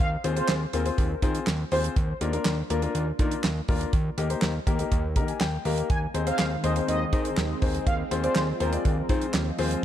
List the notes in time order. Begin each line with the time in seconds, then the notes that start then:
0.00 D#2, kick, closed hi-hat
0.24 D#2 C4 F4 G#4 C5, closed hi-hat
0.36 C4 F4 G#4 C5, closed hi-hat
0.49 D#2, snare, clap
0.73 D#2 C4 F4 G#4 A#4 C5, closed hi-hat
0.86 C4 F4 G#4 C5, closed hi-hat
0.98 D#2, kick, closed hi-hat
1.22 D#3 C4 F4 G#4 C5, kick, closed hi-hat
1.35 closed hi-hat
1.47 D#2, snare, clap
1.72 D#2 C4 F4 G#4 C5, open hi-hat
1.84 closed hi-hat
1.96 D#2, kick, closed hi-hat
2.21 D#2 A#3 D4 F4 A#4, closed hi-hat
2.33 A#3 D4 F4 A#4, closed hi-hat
2.45 D#2, snare, clap
2.70 D#2 A#3 D4 F4 A#4, closed hi-hat
2.82 A#3 D4 F4 A#4, closed hi-hat
2.95 D#2, closed hi-hat
3.19 D#3 A#3 D4 F4 A#4, kick, closed hi-hat
3.31 closed hi-hat
3.44 D#2, snare, clap
3.68 D#2 A#3 D4 F4 A#4, kick, open hi-hat
3.81 closed hi-hat
3.93 D#2, kick, closed hi-hat
4.18 D#2 A#3 D#4 G4 A#4, closed hi-hat
4.30 A#3 D#4 G4 C5, closed hi-hat
4.42 D#2, snare, clap
4.67 D#2 A#3 D#4 G4 A#4, kick, closed hi-hat
4.79 A#3 D#4 G4 A#4, closed hi-hat
4.92 D#2, kick, closed hi-hat
5.16 D#3 A#3 D#4 G4 A#4 A#5, kick, closed hi-hat
5.28 G#5, closed hi-hat
5.41 D#2 G5, snare, clap
5.65 D#2 A#3 D#4 G4 A#4 F5, open hi-hat
5.78 closed hi-hat
5.90 D#2 D#3 G#3 C4 G#5, kick, closed hi-hat
6.14 D#2 C4 D#4 G#4 C5, closed hi-hat
6.27 C4 D#4 G#4 C5 F5, closed hi-hat
6.39 D#2, snare, clap
6.64 D#2 C4 D#4 G#4 C5 D#5, closed hi-hat
6.76 C4 D#4 G#4 C5, closed hi-hat
6.88 D#2 D#5, closed hi-hat
7.13 D#3 C4 D#4 G#4 C5 D#5, kick, closed hi-hat
7.25 closed hi-hat
7.37 D#2, snare, clap
7.62 D#2 C4 D#4 G#4 C5, kick, open hi-hat
7.74 closed hi-hat
7.87 D#2 F3 F5, kick, closed hi-hat
8.11 D#2 C4 F4 G#4 C5, closed hi-hat
8.23 C4 F4 G#4 C5 D5, closed hi-hat
8.36 D#2, snare, clap
8.60 D#2 C4 F4 G#4 A#4 C5, closed hi-hat
8.73 C4 F4 G#4 D5, closed hi-hat
8.85 D#2, kick, closed hi-hat
9.09 D#3 C4 F4 G#4 C5, kick, closed hi-hat
9.22 closed hi-hat
9.34 D#2, snare, clap
9.58 D#2 C4 F4 G#4 C5, open hi-hat
9.71 closed hi-hat